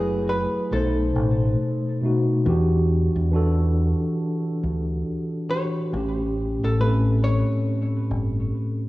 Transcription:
Already playing: F#1 F#3 A3 E4 G#4 A4 B4
0.29 B4
0.70 B1 B2 A3 D#4 A4
0.75 C5
1.16 A1
2.01 B2 A3 D#4
2.06 F#4
2.45 E2 E3 D4 F#4
2.49 G4
3.16 E2
3.31 E3 D4 F#4
3.36 A4
4.63 D2
5.49 E3 D4 F#4 C#5
5.54 G4
5.92 A1 A2 A3 C#4
5.97 G4
6.26 B4
6.63 A1 A4
6.79 A2 A3 C4 B4
6.83 A4
6.88 C#4
7.24 C#5
8.11 G1

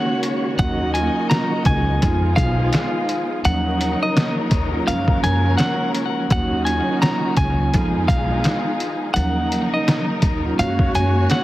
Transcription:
Already playing: C#3 D#3 G#3 A#3 C#4 F#4 C#5 F#5
0.23 closed hi-hat
0.59 D#2 F#3 A#3 C#4 D#4 F#4 D#5 F#5, kick, closed hi-hat
0.94 F#3 A#3 C#4 F4 G#5, closed hi-hat
1.30 F#3 A#3 C#4 F4 A#5, snare, closed hi-hat
1.65 C#2 G#5, kick, closed hi-hat
2.01 F2 D#3 F3 G#3 B3 D#4 F4 G#4, kick, closed hi-hat
2.36 B1 F5, kick, closed hi-hat
2.73 snare, closed hi-hat
3.09 closed hi-hat
3.45 D#2 C#3 D#3 F3 F#3 A#3 C#4 D#4 A#4 F#5, closed hi-hat
3.81 closed hi-hat
4.03 D#5
4.17 snare, closed hi-hat
4.51 D#2, kick, closed hi-hat
4.73 F#3 A#3 C#4 F4
4.87 F#2 F3 F#3 G#3 A#3 C#4 A#4 F5, closed hi-hat
5.08 kick
5.23 F#2 G#5, closed hi-hat
5.57 F#5, snare, closed hi-hat
5.95 closed hi-hat
6.30 D#2 C#3 D#3 F#3 A#3 C#4 D#4 F#4 F#5, kick, closed hi-hat
6.65 F#3 A#3 C#4 F4 G#5, closed hi-hat
7.02 F#3 A#3 C#4 F4 A#5, snare, closed hi-hat
7.37 C#2 G#5, kick, closed hi-hat
7.73 F2 D#3 F3 G#3 B3 D#4 F4 G#4, kick, closed hi-hat
8.08 B1 F5, kick, closed hi-hat
8.44 snare, closed hi-hat
8.80 closed hi-hat
9.14 D#2 C#3 D#3 F3 F#3 A#3 C#4 D#4 A#4 F#5, closed hi-hat
9.52 closed hi-hat
9.74 D#5
9.88 snare, closed hi-hat
10.22 D#2, kick, closed hi-hat
10.45 F#3 A#3 C#4 F4
10.58 F#2 G#3 A#3 C#4 F#4 C#5 F5, closed hi-hat
10.79 kick
10.95 F#2 G#5, closed hi-hat
11.30 F#5, snare, closed hi-hat

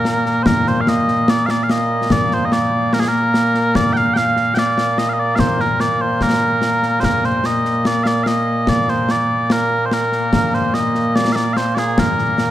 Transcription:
Already playing: A#2 A#3 A#4
0.05 snare
0.26 snare
0.43 A#4 C5, concert bass drum, snare
0.67 C5, snare
0.81 F5
0.87 D#5, snare
1.08 snare
1.28 D5, snare
1.46 F5, snare
1.50 D5
1.63 F5
1.70 D#5, snare
2.10 D5, concert bass drum, snare
2.31 C5, snare
2.45 D#5
2.52 D5, snare
2.93 A#4, snare
3.00 G#4
3.08 A#4
3.34 snare
3.54 snare
3.75 D5, concert bass drum, snare
3.93 G5, snare
3.97 F5
4.14 F5 G5, snare
4.37 snare
4.55 G5, snare
4.59 D5
4.78 snare
4.98 D#5, snare
5.09 F5
5.13 D#5
5.20 D5
5.35 C5 F5, concert bass drum, snare
5.60 A#4, snare
5.80 D5, snare
6.01 C5
6.21 A#4, concert bass drum, snare
6.62 snare
6.83 snare
7.00 C5, concert bass drum, snare
7.04 A#4
7.24 C5, snare
7.44 D#5, snare
7.65 snare
7.85 D5, snare
8.04 D5 F5, snare
8.24 D#5 F5, snare
8.67 D5, concert bass drum, snare
8.88 C5, snare
9.09 D5, snare
9.50 A#4, snare
9.85 C5
9.91 A#4, snare
10.12 snare
10.33 concert bass drum, snare
10.54 C5, snare
10.74 D#5, snare
10.95 snare
11.16 D5, snare
11.32 D5 F5, snare
11.53 C5 F5, snare
11.75 G#4 D5, snare
11.98 A#4, concert bass drum, snare
12.18 snare
12.38 snare

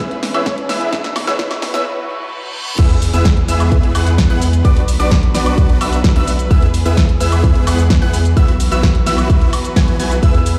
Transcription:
Already playing: E3 G#3 B3 G#4 B4, riser
0.00 B3 E4 G#4 B4 E5 E6
0.11 closed hi-hat
0.23 snare, open hi-hat
0.34 B3 E4 G#4 B4 C#5 E5 E6, closed hi-hat, high woodblock
0.46 C#5, kick, snare, closed hi-hat
0.58 closed hi-hat
0.69 B3 E4 G#4 B4 E5 E6, snare, open hi-hat
0.81 E5, closed hi-hat
0.92 F#3 B3 E4 F#4 G#4 B4 E5 E6, kick, snare, closed hi-hat
1.04 snare, closed hi-hat
1.16 snare, open hi-hat, high woodblock
1.27 B3 E4 G#4 B4 C#5 E5 E6, snare, closed hi-hat
1.39 B3 E4 G#4 B4 E5 E6, kick, snare, closed hi-hat
1.51 snare, closed hi-hat, high woodblock
1.62 snare, open hi-hat
1.74 B3 E4 G#4 B4 C#5 E5 E6, snare, closed hi-hat
1.86 reverse cymbal
2.79 E2 E3 G#3 B3 E4 G#4 B4 E5 E6, kick, closed hi-hat, crash, impact, cabasa
2.90 closed hi-hat
3.02 open hi-hat, cabasa
3.14 E2 B3 E4 G#4 B4 E5 E6, closed hi-hat, cabasa
3.25 kick, snare, closed hi-hat, cabasa
3.37 closed hi-hat
3.48 E2 B3 E4 G#4 B4 E5 E6, open hi-hat, cabasa
3.60 closed hi-hat, cabasa, high woodblock
3.72 kick, closed hi-hat, cabasa
3.83 closed hi-hat
3.95 E2 B3 E4 G#4 B4 F#5 F#6, open hi-hat, cabasa, high woodblock
4.07 closed hi-hat, cabasa
4.18 kick, snare, closed hi-hat, cabasa
4.30 E2 B3 E4 G#4 B4 F#5 F#6, closed hi-hat
4.42 open hi-hat, cabasa
4.53 closed hi-hat, cabasa
4.65 B1 D3 F#3 B3 D4 F#4 B4 D5 D6, kick, closed hi-hat, cabasa
4.77 closed hi-hat
4.88 open hi-hat, cabasa
5.00 B1 B3 D4 F#4 B4 D5 D6, closed hi-hat, cabasa
5.11 kick, snare, closed hi-hat, cabasa
5.23 closed hi-hat
5.34 B1 B3 D4 F#4 B4 D5 D6, snare, open hi-hat, cabasa
5.46 closed hi-hat, cabasa, high woodblock
5.58 kick, closed hi-hat, cabasa
5.69 closed hi-hat
5.81 B1 B3 D4 F#4 B4 E5 E6, open hi-hat, cabasa, high woodblock
5.93 closed hi-hat, cabasa
6.04 kick, snare, closed hi-hat, cabasa
6.16 B1 B3 D4 F#4 B4 E5 E6, closed hi-hat
6.27 open hi-hat, cabasa
6.39 closed hi-hat, cabasa
6.51 E2 E3 G#3 B3 E4 G#4 B4 E5 E6, kick, closed hi-hat, cabasa
6.62 closed hi-hat
6.74 open hi-hat, cabasa
6.86 E2 B3 E4 G#4 B4 E5 E6, closed hi-hat, cabasa
6.97 kick, snare, closed hi-hat, cabasa
7.09 closed hi-hat
7.20 E2 B3 E4 G#4 B4 E5 E6, open hi-hat, cabasa
7.32 closed hi-hat, cabasa, high woodblock
7.44 kick, closed hi-hat, cabasa
7.55 closed hi-hat
7.67 E2 B3 E4 G#4 B4 F#5 F#6, open hi-hat, cabasa, high woodblock
7.79 closed hi-hat, cabasa
7.90 kick, snare, closed hi-hat, cabasa
8.02 E2 B3 E4 G#4 B4 F#5 F#6, closed hi-hat
8.13 open hi-hat, cabasa
8.25 closed hi-hat, cabasa
8.37 B1 F#3 B3 E4 F#4 B4 E5 E6, kick, closed hi-hat, cabasa
8.48 closed hi-hat
8.60 open hi-hat, cabasa
8.72 B1 B3 E4 F#4 B4 E5 E6, closed hi-hat, cabasa
8.83 kick, snare, closed hi-hat, cabasa
8.95 closed hi-hat
9.06 B1 B3 E4 F#4 B4 E5 E6, snare, open hi-hat, cabasa
9.18 closed hi-hat, cabasa, high woodblock
9.30 kick, closed hi-hat, cabasa
9.41 closed hi-hat
9.53 open hi-hat, cabasa, high woodblock
9.65 closed hi-hat, cabasa
9.76 B1 B3 E4 F#4 B4 G#5 G#6, kick, snare, closed hi-hat, cabasa
9.88 closed hi-hat
10.00 B1 B3 E4 F#4 B4 G#5 G#6, open hi-hat, cabasa
10.11 closed hi-hat, cabasa
10.23 E2 G#3 B3 E4 G#4 B4 E5 E6, kick, closed hi-hat, ride, cabasa
10.34 closed hi-hat
10.46 open hi-hat, cabasa

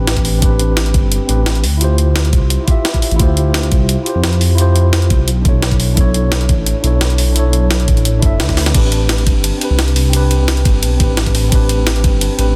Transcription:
Already playing: A1 C4 D4 G4 B4
0.07 snare, closed hi-hat
0.17 kick, closed hi-hat
0.25 open hi-hat
0.39 C4 D4, kick, closed hi-hat
0.43 G4 B4
0.59 closed hi-hat
0.77 snare, closed hi-hat
0.86 closed hi-hat
0.94 G1, kick, closed hi-hat
1.12 closed hi-hat
1.27 A1 C4 D4 G4 B4, closed hi-hat
1.46 snare, closed hi-hat
1.55 closed hi-hat
1.63 D2, open hi-hat
1.77 E4 F4, closed hi-hat
1.82 G4 C5
1.98 closed hi-hat
2.16 snare, closed hi-hat
2.25 closed hi-hat
2.33 C2, kick, closed hi-hat
2.50 closed hi-hat
2.64 E4 F4, kick, closed hi-hat
2.69 G4 E5
2.85 snare, closed hi-hat
2.94 kick, closed hi-hat
3.02 open hi-hat
3.11 A1, closed hi-hat
3.16 D2 E4 F4, kick, closed hi-hat
3.21 G4 C5
3.37 closed hi-hat
3.54 snare, closed hi-hat
3.63 closed hi-hat
3.72 C2, kick, closed hi-hat
3.89 closed hi-hat
4.03 E4 F4, closed hi-hat
4.07 G4 C5
4.15 F2
4.24 snare, closed hi-hat
4.33 closed hi-hat
4.41 open hi-hat
4.55 E4 F4, closed hi-hat
4.59 G4 C5
4.76 closed hi-hat
4.93 snare, closed hi-hat
5.02 closed hi-hat
5.10 C2, kick, closed hi-hat
5.28 B1, closed hi-hat
5.42 B1 D4 E4, kick, closed hi-hat
5.46 A4 C#5
5.62 snare, closed hi-hat
5.72 kick, closed hi-hat
5.80 open hi-hat
5.94 D4 E4, kick, closed hi-hat
5.98 A4 C#5
6.14 closed hi-hat
6.32 snare, closed hi-hat
6.41 closed hi-hat
6.49 A1, kick, closed hi-hat
6.66 closed hi-hat
6.80 B1 D4 E4, closed hi-hat
6.85 A4 C#5
7.01 snare, closed hi-hat
7.10 closed hi-hat
7.18 open hi-hat
7.32 D4 E4, closed hi-hat
7.37 A4 C#5
7.53 closed hi-hat
7.71 snare, closed hi-hat
7.80 closed hi-hat
7.88 A1, kick, closed hi-hat
7.97 closed hi-hat
8.05 closed hi-hat
8.19 F#1 D4 E4, kick, closed hi-hat
8.24 A4 E5
8.40 D2, snare, closed hi-hat
8.49 kick, snare, closed hi-hat
8.57 snare, open hi-hat
8.66 snare, closed hi-hat
8.71 A1 C4 D4, kick, closed hi-hat, crash, ride
8.76 G4 B4
8.92 closed hi-hat, ride
9.09 snare, closed hi-hat, ride
9.18 closed hi-hat
9.27 G1, kick, closed hi-hat, ride
9.44 closed hi-hat, ride
9.58 C4 D4, closed hi-hat, ride
9.62 G4 B4
9.70 C2
9.79 snare, closed hi-hat, ride
9.88 closed hi-hat
9.96 open hi-hat, ride
10.10 C4 D4, closed hi-hat, ride
10.14 G4 B4
10.31 closed hi-hat, ride
10.48 snare, closed hi-hat, ride
10.57 closed hi-hat
10.65 G1, kick, closed hi-hat, ride
10.82 B1, closed hi-hat, ride
10.97 A1 C4 D4, kick, closed hi-hat, ride
11.01 G4 B4
11.17 snare, closed hi-hat, ride
11.26 kick, closed hi-hat
11.35 open hi-hat, ride
11.48 C4 D4, kick, closed hi-hat, ride
11.53 G4 B4
11.69 closed hi-hat, ride
11.87 snare, closed hi-hat, ride
11.96 closed hi-hat
12.04 G1, kick, closed hi-hat, ride
12.21 closed hi-hat, ride
12.37 A1 C4 D4 G4 B4, closed hi-hat, ride

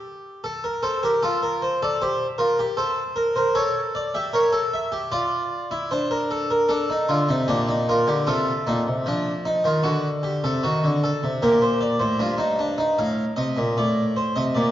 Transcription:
Already playing: G4
0.44 A4
0.64 A#4
0.83 A4 C5
1.03 G4 A#4
1.23 F4 A4
1.43 A#4
1.62 C5
1.82 A4 D5
2.01 G4 C5
2.38 F4 A#4
2.59 G4
2.77 A4 C5
3.16 A#4
3.36 A#4 C5
3.55 A4 C#5
3.95 D5
4.14 G4 E5
4.33 A#4 C#5
4.53 A4
4.74 E5
4.92 G4
5.12 F4 D5
5.71 E4
5.91 D4 C5
6.11 A#4
6.31 A4
6.51 A#4
6.69 D4 A4
6.90 D#4
7.09 D3 F4
7.29 C3 D#4
7.48 A#2 D4 G4
7.68 D#4
7.89 F4 A#4
8.07 D3 G4
8.27 C3 F4 A4
8.67 A#2 D#4
8.87 C3
9.06 F3 D4
9.45 D#4
9.64 D#3 F4
9.83 D3 F#4
10.23 G4
10.44 C3 A4
10.64 D#3 F#4
10.84 D3
11.04 A4
11.23 C3
11.43 A#2 G4 A#4
11.62 C5
11.81 D5
12.00 A2 C5
12.19 G2 F4
12.38 D#4
12.59 D4
12.78 D#4
12.99 A2 F5
13.36 C3 D#5
13.57 A#2
13.77 A2 D5
14.16 C5
14.36 C3 D#5
14.55 A#2 D5

